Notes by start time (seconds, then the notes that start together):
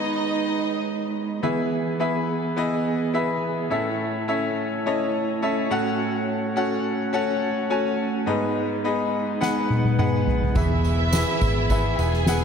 Already playing: D#3 G#3 B3 D#4 B4 C#5 D#5
1.43 E3 B3 E4 G#4 B4 E5
2.00 B3 E4 G#4 B4 E5
2.56 B3 E4 G#4 B4 D#5
3.14 B3 E4 G#4 B4 E5
3.70 A2 A3 C#4 E4 A4 C#5 E5
4.28 C#4 E4 A4 C#5 E5
4.86 C#4 E4 A4 C#5 D#5
5.42 C#4 E4 A4 C#5 E5
5.71 A2 A3 C#4 F#4 A4 C#5 F#5
6.56 C#4 F#4 A4 C#5 F#5
7.13 C#4 F#4 A4 C#5 F#5
7.70 C#4 F#4 A4 C#5 G#5
8.26 G#2 G#3 B3 D#4 G#4 B4 D#5
8.84 B3 D#4 G#4 B4 D#5
9.41 B3 D#4 G#4 B4 F#5, snare
9.70 high tom
9.85 high tom
9.99 B3 D#4 G#4 B4 F#5, mid tom
10.27 floor tom
10.42 floor tom
10.55 E1 E3 B3 E4 G#4 B4 E5, kick, ride, tambourine
10.69 ride
10.84 ride, tambourine
10.99 ride
11.13 B3 E4 G#4 B4 E5, snare, ride, tambourine
11.28 ride
11.41 G#1, kick, ride, tambourine
11.56 ride
11.70 B3 E4 G#4 B4 E5, kick, ride, tambourine
11.98 E1 G#4 G#5, ride, tambourine
12.13 snare, ride
12.26 B3 E4 G#4 B4 F#5, snare, ride, tambourine
12.41 ride